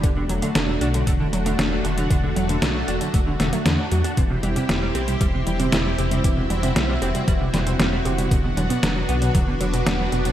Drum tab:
HH |x-xxx-xxx-xxx-xx|x-xxx-xxx-xxx-xx|x-xxx-xxx-xxx-xx|x-xxx-xxx-xxx-xx|
SD |----o-------o---|----o-----o-o---|----o-------o---|----o-----o-o---|
BD |o-------o-------|o-------o-------|o-------o-------|o-------o-------|

HH |x-xxx-xxx-xxx-xx|
SD |----o-------o---|
BD |o-------o-------|